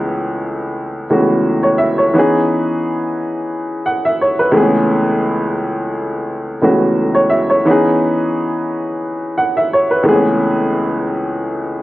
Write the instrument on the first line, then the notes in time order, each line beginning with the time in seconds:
upright piano
Already playing: C#2 E3 A3 B3 C#4 G#4
1.10 C#2 E3 A3 B3 C#4 F#4
1.63 C#5
1.78 E5
1.98 C#5
2.14 E3 B3 C#4
2.18 D#4 G#4
3.86 F#5
4.05 E5
4.22 C#5
4.39 B4
4.52 C#2 E3 A3 B3
4.56 C4 G#4
4.62 C#4
6.62 C#2 E3 A3 B3 C#4 F#4
7.15 C#5
7.30 E5
7.50 C#5
7.65 E3 B3 C#4
7.70 D#4 G#4
9.38 F#5
9.57 E5
9.73 C#5
9.91 B4
10.03 C#2 E3 A3 B3
10.07 C4 G#4
10.14 C#4